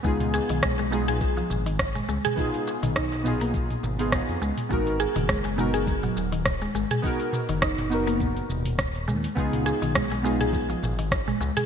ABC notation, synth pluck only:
X:1
M:4/4
L:1/16
Q:"Swing 16ths" 1/4=103
K:C#mix
V:1 name="Synth pluck" clef=bass
G,2 G D, G, G, G, G z E,2 D, z G, G, G | z3 D, D3 A, z6 G, z | G,2 G D, G, G, G, G z F,2 D, z G, G, G | z3 D, D3 A, z6 G, z |
G,2 G D, G, G, G, G z E,2 D, z G, G, G |]